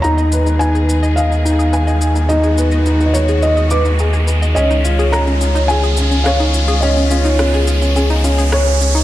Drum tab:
SH |xxxxxxxxxxxxxxxx|xxxxxxxxxxxxxxxx|xxxxxxxxxxxxxxxx|xxxxxxxxxxxxxxxx|
SD |----------------|----------------|----r-------r---|----r-------r---|